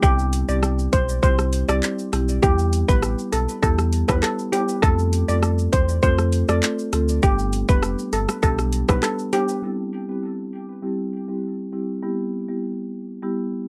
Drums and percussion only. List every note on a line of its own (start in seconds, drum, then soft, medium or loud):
0.03 kick loud
0.03 maracas medium
0.03 shaker medium
0.19 maracas medium
0.19 shaker medium
0.33 closed hi-hat medium
0.33 maracas medium
0.33 shaker medium
0.49 maracas medium
0.49 shaker medium
0.63 cross-stick loud
0.63 maracas medium
0.63 shaker medium
0.79 maracas medium
0.79 shaker medium
0.93 kick loud
0.93 closed hi-hat medium
0.93 shaker medium
0.93 maracas soft
1.09 maracas medium
1.09 shaker medium
1.23 kick loud
1.23 maracas medium
1.23 shaker medium
1.39 cross-stick medium
1.39 maracas soft
1.39 shaker medium
1.53 closed hi-hat medium
1.53 shaker medium
1.53 maracas soft
1.69 cross-stick loud
1.69 maracas medium
1.69 shaker medium
1.83 clap medium
1.83 maracas medium
1.83 shaker medium
1.99 maracas medium
1.99 shaker medium
2.13 cross-stick medium
2.13 closed hi-hat medium
2.13 shaker medium
2.29 shaker medium
2.29 maracas medium
2.43 kick loud
2.43 maracas medium
2.43 shaker medium
2.59 maracas medium
2.59 shaker medium
2.73 closed hi-hat medium
2.73 maracas medium
2.73 shaker medium
2.89 kick loud
2.89 shaker medium
2.89 maracas medium
3.02 cross-stick medium
3.02 maracas medium
3.02 shaker medium
3.19 maracas medium
3.19 shaker medium
3.33 closed hi-hat medium
3.33 shaker medium
3.33 maracas soft
3.49 shaker medium
3.49 maracas medium
3.63 kick loud
3.63 shaker medium
3.63 maracas medium
3.79 cross-stick medium
3.79 shaker medium
3.79 maracas soft
3.93 closed hi-hat medium
3.93 shaker medium
3.93 maracas soft
4.08 kick medium
4.08 cross-stick loud
4.08 high timbale medium
4.08 shaker medium
4.08 maracas medium
4.23 cross-stick medium
4.23 clap medium
4.23 shaker medium
4.23 maracas medium
4.39 shaker medium
4.39 maracas medium
4.53 closed hi-hat medium
4.53 high timbale medium
4.53 shaker medium
4.68 shaker medium
4.68 maracas medium
4.83 kick loud
4.83 shaker medium
4.83 maracas medium
4.99 maracas medium
4.99 shaker medium
5.13 closed hi-hat medium
5.13 shaker medium
5.13 maracas medium
5.29 shaker medium
5.29 maracas medium
5.43 cross-stick loud
5.43 maracas medium
5.43 shaker medium
5.58 maracas medium
5.58 shaker medium
5.73 kick loud
5.73 closed hi-hat medium
5.73 maracas medium
5.73 shaker medium
5.89 maracas medium
5.89 shaker medium
6.03 kick loud
6.03 maracas medium
6.03 shaker medium
6.18 cross-stick medium
6.18 maracas soft
6.18 shaker medium
6.32 closed hi-hat medium
6.32 shaker medium
6.32 maracas soft
6.48 cross-stick loud
6.48 shaker medium
6.48 maracas medium
6.63 clap medium
6.63 shaker medium
6.63 maracas medium
6.79 maracas soft
6.79 shaker medium
6.93 cross-stick medium
6.93 closed hi-hat medium
6.93 shaker medium
7.08 shaker medium
7.08 maracas medium
7.23 kick loud
7.23 maracas medium
7.23 shaker medium
7.39 maracas medium
7.39 shaker medium
7.53 closed hi-hat medium
7.53 maracas medium
7.53 shaker medium
7.69 kick loud
7.69 maracas medium
7.69 shaker medium
7.83 cross-stick loud
7.83 maracas medium
7.83 shaker medium
7.99 maracas medium
7.99 shaker medium
8.13 closed hi-hat medium
8.13 shaker medium
8.13 maracas soft
8.29 cross-stick loud
8.29 maracas medium
8.29 shaker medium
8.43 kick loud
8.43 maracas medium
8.43 shaker medium
8.59 cross-stick medium
8.59 maracas soft
8.59 shaker medium
8.73 closed hi-hat medium
8.73 shaker medium
8.73 maracas soft
8.89 kick medium
8.89 cross-stick loud
8.89 high timbale medium
8.89 maracas medium
8.89 shaker medium
9.03 cross-stick loud
9.03 clap medium
9.03 shaker medium
9.03 maracas medium
9.19 shaker medium
9.19 maracas medium
9.33 closed hi-hat medium
9.33 high timbale medium
9.33 shaker medium
9.48 shaker medium
9.48 maracas medium